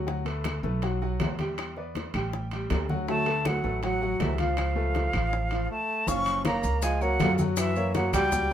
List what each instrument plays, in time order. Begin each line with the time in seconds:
Already playing: upright bass D2
0.07 upright piano F#3 F#4 F#5, high bongo, high conga
0.25 upright piano A3 A4 B4, high conga, high timbale
0.44 high bongo, high conga, high timbale, low timbale, claves
0.63 upright bass B1, upright piano A3 A4 B4, high bongo, high conga
0.82 upright piano F#3 F#4 F#5, high bongo, high conga, high timbale
1.01 upright piano F#3 F#4 F#5, high bongo, high conga
1.20 upright bass E2, high bongo, low bongo, high conga, high timbale, low timbale, claves
1.39 upright piano G3 G4 G5, high bongo, high conga, high timbale
1.58 high bongo, high conga, high timbale, claves
1.76 upright piano B3 B4 D5, high conga
1.95 high bongo, high conga, high timbale, low timbale
2.14 upright bass A1, upright piano G3 G4 G5, high bongo, high conga, high timbale, claves
2.33 high bongo, high conga
2.51 upright piano G3 G4 G5, high bongo, high conga, high timbale
2.70 upright bass D2, high bongo, low bongo, high conga, high timbale, low timbale, claves
2.89 upright piano F#3 F#4 F#5, high bongo, high conga
3.08 upright piano F#3 F#4 F#5, tenor saxophone A3, flute A5, high bongo, high conga
3.26 upright piano A3 A4 B4, high conga, high timbale
3.45 tenor saxophone F#3, flute F#5, high bongo, high conga, high timbale, low timbale, claves
3.64 upright bass A1, upright piano A3 A4 B4, high bongo, high conga
3.82 upright piano F#3 F#4 F#5, tenor saxophone F#3, flute F#5, high bongo, high conga, high timbale
4.01 upright piano F#3 F#4 F#5, high bongo, high conga
4.20 upright bass C#2, tenor saxophone E3, flute E5, high bongo, low bongo, high conga, high timbale, low timbale, claves
4.38 upright piano F3 F4 F5, tenor saxophone F3, flute F5, high bongo, high conga, high timbale
4.57 high bongo, high conga, high timbale, claves
4.75 upright piano A3 A4 B4, high conga
4.95 high bongo, high conga, high timbale, low timbale
5.13 upright bass A1, upright piano F3 F4 F5, high bongo, high conga, high timbale, claves
5.32 high bongo, high conga
5.51 upright piano F3 F4 F5, high bongo, high conga, high timbale
5.71 tenor saxophone A3, flute A5
6.07 upright bass F#1, upright piano F3 F4 F5, tenor saxophone C#4, flute C#6, high bongo, high conga, maracas
6.26 high conga, high timbale, maracas
6.45 upright piano A#3 A#4 C#5, tenor saxophone A#3, flute A#5, high bongo, high conga, high timbale, low timbale, claves, maracas
6.63 upright bass C#2, high bongo, high conga, maracas
6.82 upright piano F3 F4 F5, tenor saxophone G#3, flute G#5, high bongo, high conga, high timbale, maracas
7.01 tenor saxophone F#3, upright piano A#3 A#4 C#5, flute F#5, high bongo, high conga, maracas
7.20 upright bass F#2, upright piano F3 F4 F5, high bongo, low bongo, high conga, high timbale, low timbale, claves, maracas
7.38 upright piano F#3 F#4 F#5, high bongo, high conga, maracas
7.57 tenor saxophone E3, flute E5, high bongo, high conga, high timbale, claves, maracas
7.76 upright piano A#3 A#4 C#5, high conga, maracas
7.95 tenor saxophone F#3, upright piano A#3 A#4 C#5, flute F#5, high bongo, high conga, high timbale, low timbale, maracas
8.13 upright bass C#2, upright piano G3 F#4 G5, tenor saxophone G3, flute G5, high bongo, high conga, low conga, high timbale, claves, maracas
8.32 high bongo, high conga, low conga, maracas